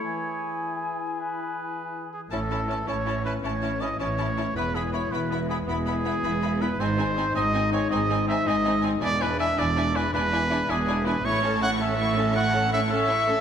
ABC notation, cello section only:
X:1
M:12/8
L:1/8
Q:3/8=107
K:E
V:1 name="Cello section" clef=bass
z12 | A,,3 A,,3 A,,3 A,,3 | E,,3 E,,3 E,,3 E,,3 | G,,3 G,,3 G,,3 G,,3 |
E,,3 E,,3 E,,3 E,,3 | A,,12 |]